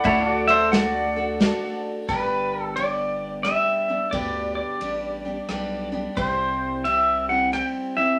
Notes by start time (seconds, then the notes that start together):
Already playing: D5 F#5
0.04 D2 D3 A3 D4 E4 F#4 A4, kick, ride
0.08 C#5
0.28 F#4 D5
0.48 C5 E5, ride
0.72 A3 D4 F#4 A4 D5 F#5, snare, ride
1.16 D4 F#4 A4
1.40 A3 D4 F#4 A4 D5, snare, ride
2.08 G1 G2 D3 G3 B3 D4 G4 B4, kick, ride
2.62 A4
2.76 G3 B3 D4 G4 D5, ride
3.43 G3 B3 D4 G4 E5, cross-stick, ride
3.88 G3 B3 D4 G4
4.11 D2 G2 D3 G3 B3 D4 G4 D5, kick, ride
4.55 D5
4.81 A1 G3 B3 D4 G4, ride
5.25 G3 B3 D4 G4
5.49 B1 G3 B3 D4 G4, cross-stick, ride
5.92 G3 B3 D4 G4
6.16 C2 C3 G3 C4 E4 G4 C5, kick, ride
6.84 G3 C4 E4 G4 E5, ride
7.29 C4 E4 G4 F#5
7.52 G3 C4 E4 G4 G5, cross-stick, ride
7.96 C4 E4 G4 E5